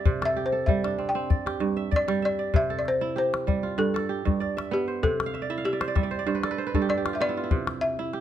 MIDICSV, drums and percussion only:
0, 0, Header, 1, 2, 480
1, 0, Start_track
1, 0, Key_signature, 0, "major"
1, 0, Tempo, 621762
1, 42, Time_signature, 4, 2, 24, 8
1, 6334, End_track
2, 0, Start_track
2, 0, Title_t, "Calabash"
2, 43, Note_on_c, 9, 36, 67
2, 120, Note_off_c, 9, 36, 0
2, 171, Note_on_c, 9, 38, 54
2, 249, Note_off_c, 9, 38, 0
2, 521, Note_on_c, 9, 36, 58
2, 599, Note_off_c, 9, 36, 0
2, 652, Note_on_c, 9, 38, 48
2, 729, Note_off_c, 9, 38, 0
2, 763, Note_on_c, 9, 38, 20
2, 840, Note_off_c, 9, 38, 0
2, 1007, Note_on_c, 9, 36, 64
2, 1084, Note_off_c, 9, 36, 0
2, 1136, Note_on_c, 9, 38, 50
2, 1213, Note_off_c, 9, 38, 0
2, 1485, Note_on_c, 9, 36, 59
2, 1563, Note_off_c, 9, 36, 0
2, 1609, Note_on_c, 9, 38, 50
2, 1687, Note_off_c, 9, 38, 0
2, 1960, Note_on_c, 9, 36, 56
2, 2037, Note_off_c, 9, 36, 0
2, 2204, Note_on_c, 9, 38, 19
2, 2281, Note_off_c, 9, 38, 0
2, 2449, Note_on_c, 9, 38, 19
2, 2526, Note_off_c, 9, 38, 0
2, 2577, Note_on_c, 9, 38, 50
2, 2654, Note_off_c, 9, 38, 0
2, 2687, Note_on_c, 9, 36, 64
2, 2687, Note_on_c, 9, 38, 20
2, 2765, Note_off_c, 9, 36, 0
2, 2765, Note_off_c, 9, 38, 0
2, 3059, Note_on_c, 9, 38, 53
2, 3136, Note_off_c, 9, 38, 0
2, 3299, Note_on_c, 9, 36, 54
2, 3376, Note_off_c, 9, 36, 0
2, 3409, Note_on_c, 9, 38, 21
2, 3487, Note_off_c, 9, 38, 0
2, 3539, Note_on_c, 9, 38, 55
2, 3617, Note_off_c, 9, 38, 0
2, 3887, Note_on_c, 9, 36, 62
2, 3964, Note_off_c, 9, 36, 0
2, 4015, Note_on_c, 9, 38, 57
2, 4092, Note_off_c, 9, 38, 0
2, 4129, Note_on_c, 9, 38, 23
2, 4206, Note_off_c, 9, 38, 0
2, 4367, Note_on_c, 9, 38, 22
2, 4444, Note_off_c, 9, 38, 0
2, 4486, Note_on_c, 9, 38, 55
2, 4563, Note_off_c, 9, 38, 0
2, 4602, Note_on_c, 9, 36, 69
2, 4602, Note_on_c, 9, 38, 23
2, 4679, Note_off_c, 9, 36, 0
2, 4679, Note_off_c, 9, 38, 0
2, 4968, Note_on_c, 9, 38, 52
2, 5045, Note_off_c, 9, 38, 0
2, 5205, Note_on_c, 9, 36, 49
2, 5282, Note_off_c, 9, 36, 0
2, 5321, Note_on_c, 9, 38, 22
2, 5398, Note_off_c, 9, 38, 0
2, 5447, Note_on_c, 9, 38, 54
2, 5525, Note_off_c, 9, 38, 0
2, 5797, Note_on_c, 9, 36, 68
2, 5874, Note_off_c, 9, 36, 0
2, 5924, Note_on_c, 9, 38, 55
2, 6001, Note_off_c, 9, 38, 0
2, 6039, Note_on_c, 9, 38, 23
2, 6116, Note_off_c, 9, 38, 0
2, 6280, Note_on_c, 9, 38, 21
2, 6334, Note_off_c, 9, 38, 0
2, 6334, End_track
0, 0, End_of_file